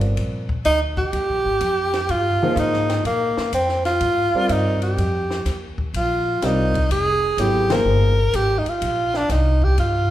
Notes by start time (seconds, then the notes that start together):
Already playing: G1 G3 C4 F4 A#4 D5
0.01 ride
0.17 A#1, ride
0.49 kick
0.65 D2 D#4, hi-hat pedal, ride
0.97 G4, kick
1.13 D#2, ride
1.29 A#1
1.45 G#1
1.61 F2, hi-hat pedal, ride
1.93 snare, ride
2.09 G2 F4, ride
2.41 F3 A#3 D#4 G#4 C5, muted upright bass stroke
2.56 G#2 D#4, hi-hat pedal, ride
2.74 snare
2.89 snare, ride
3.04 A#2 A#3, ride
3.37 muted upright bass stroke, snare
3.53 F2 C4, hi-hat pedal, ride
3.69 snare
3.85 F4, snare, ride
4.01 G#2, ride
4.34 G3 C4 F4 A#4 D5, muted upright bass stroke
4.49 G2 D#4, hi-hat pedal, ride
4.82 G4, ride
4.97 F2, ride
5.31 snare
5.45 D#2, snare, hi-hat pedal, ride
5.78 kick
5.94 A#1 F4, ride
6.42 C2 G3 C4 D#4 F4 A#4 D5, snare, hi-hat pedal, ride
6.74 kick, ride
6.89 F1 G#4, ride
7.37 G#1 F#3 B3 E4 G4 A4 C#5, hi-hat pedal, ride
7.70 F3 A#3 D#4 G#4 A#4 C5, snare, ride
7.85 G1
8.33 G#1 G4, hi-hat pedal, ride
8.58 D#4
8.66 F4, muted upright bass stroke, ride
8.82 A#1, ride
9.14 D4, snare
9.29 C2 D#4, snare, hi-hat pedal, ride
9.62 G4, kick
9.78 G2 F4, ride